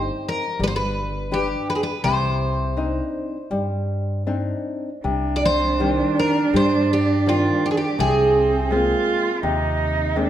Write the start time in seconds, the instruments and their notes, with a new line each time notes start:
Already playing: nylon-string guitar C4 D#4 G4, twelve-string acoustic guitar C5
0.28 twelve-string acoustic guitar A#4
0.59 upright bass G1, nylon-string guitar G3
0.64 twelve-string acoustic guitar B4 C5
0.76 twelve-string acoustic guitar B4
1.31 nylon-string guitar D4 G4 B4, twelve-string acoustic guitar G4
1.70 twelve-string acoustic guitar B4
1.75 twelve-string acoustic guitar G#4
1.83 twelve-string acoustic guitar B4
2.04 upright bass C2, nylon-string guitar C3, twelve-string acoustic guitar C5
2.77 nylon-string guitar C4 D4 D#4
3.51 upright bass G2, nylon-string guitar G3
4.27 nylon-string guitar C4 D4 D#4
5.04 upright bass C2, nylon-string guitar C3, cello D4
5.36 twelve-string acoustic guitar D5
5.45 twelve-string acoustic guitar C5
5.80 nylon-string guitar D#3 G3 C4
6.19 twelve-string acoustic guitar A#4
6.54 upright bass G2, nylon-string guitar G3, twelve-string acoustic guitar C5
6.93 twelve-string acoustic guitar G4
7.26 nylon-string guitar D#3 G3 C4, twelve-string acoustic guitar F4
7.66 twelve-string acoustic guitar G4
7.71 twelve-string acoustic guitar G#4
7.77 twelve-string acoustic guitar G4
7.98 upright bass C2, nylon-string guitar C3, cello C4, twelve-string acoustic guitar G#4
8.70 nylon-string guitar G#3 A#3 C4, cello F4
9.43 upright bass D#2, nylon-string guitar C3, cello D#4
10.16 nylon-string guitar G#3 A#3 C4, cello D4